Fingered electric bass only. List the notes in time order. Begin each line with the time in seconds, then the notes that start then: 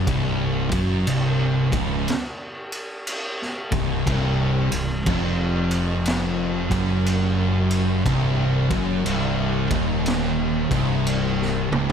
0.07 C1
0.72 F#1
1.08 C1
1.73 C#1
3.72 C1
4.07 C1
4.72 C1
5.06 F1
6.71 F#1
8.06 C1
8.71 F#1
9.06 C1
9.71 D#1
10.71 C1
11.72 C#1